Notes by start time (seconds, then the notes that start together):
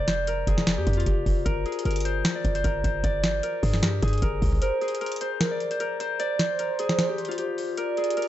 Already playing: F1 G#4 A#4 D5
0.08 C5, snare, closed hi-hat
0.27 A#4, closed hi-hat
0.47 F1 G#4, kick, closed hi-hat
0.58 snare
0.67 snare, closed hi-hat
0.77 F2 G4
0.87 F2, kick, closed hi-hat
0.93 F4, closed hi-hat
1.00 closed hi-hat
1.06 F1 G4, kick, closed hi-hat
1.26 F1, kick, open hi-hat
1.45 G1 A#4, kick, closed hi-hat
1.66 G#4, closed hi-hat
1.72 closed hi-hat
1.79 closed hi-hat
1.85 G1 A#4, closed hi-hat
1.91 closed hi-hat
1.96 closed hi-hat
2.00 closed hi-hat
2.05 C5, closed hi-hat
2.25 snare, closed hi-hat
2.35 D5
2.45 G1, kick, closed hi-hat
2.55 C5, closed hi-hat
2.64 G1 A#4, kick, closed hi-hat
2.84 G1 C5, kick, closed hi-hat
3.04 G1 D5, kick, closed hi-hat
3.23 C5, snare, closed hi-hat
3.43 A#4, closed hi-hat
3.63 G2 G#4, kick, open hi-hat
3.74 snare
3.83 G4, snare, closed hi-hat
4.02 G2 G#4, kick, closed hi-hat
4.08 closed hi-hat
4.13 closed hi-hat
4.18 closed hi-hat
4.22 G1 A#4, kick, closed hi-hat
4.42 C2, kick, open hi-hat
4.53 kick
4.62 A#4 C5, closed hi-hat
4.81 G#4, closed hi-hat
4.88 closed hi-hat
4.95 closed hi-hat
5.01 A#4, closed hi-hat
5.06 closed hi-hat
5.12 closed hi-hat
5.16 closed hi-hat
5.21 C5, closed hi-hat
5.41 A#4, snare, closed hi-hat
5.51 D5
5.60 closed hi-hat
5.71 C5, closed hi-hat
5.80 A#4, closed hi-hat
6.00 C5, closed hi-hat
6.19 C5 D5, closed hi-hat
6.39 C5, snare, closed hi-hat
6.59 A#4, closed hi-hat
6.79 G#4, closed hi-hat
6.89 snare
6.99 snare, closed hi-hat
7.09 G4
7.18 closed hi-hat
7.25 F4, closed hi-hat
7.31 closed hi-hat
7.38 G4, closed hi-hat
7.58 open hi-hat
7.77 A#4 D5, closed hi-hat
7.97 G#4, closed hi-hat
8.04 closed hi-hat
8.10 closed hi-hat
8.17 A#4, closed hi-hat
8.22 closed hi-hat